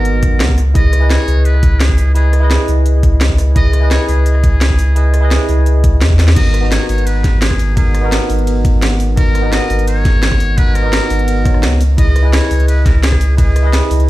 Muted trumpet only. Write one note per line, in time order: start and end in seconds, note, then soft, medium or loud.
0.00 0.58 A#4 loud
0.75 1.12 D#5 loud
1.10 1.47 C#5 loud
1.45 1.82 B4 medium
1.80 2.15 G#4 medium
2.15 2.48 G#4 medium
3.56 3.89 D#5 loud
3.91 4.07 C#5 loud
4.08 5.97 G#4 medium
6.37 6.69 D#5 loud
6.72 6.88 C#5 loud
6.89 7.08 C#5 loud
7.06 7.43 B4 medium
7.42 7.77 G#4 medium
7.77 8.10 G#4 medium
9.18 9.54 A#4 loud
9.53 9.87 D#5 loud
9.88 10.59 C#5 loud
10.58 10.76 B4 loud
10.75 11.80 A#4 loud
11.98 12.34 D#5 loud
12.33 12.67 C#5 loud
12.68 12.87 B4 medium
12.86 13.03 A#4 medium
13.03 13.36 G#4 medium
13.38 13.71 G#4 medium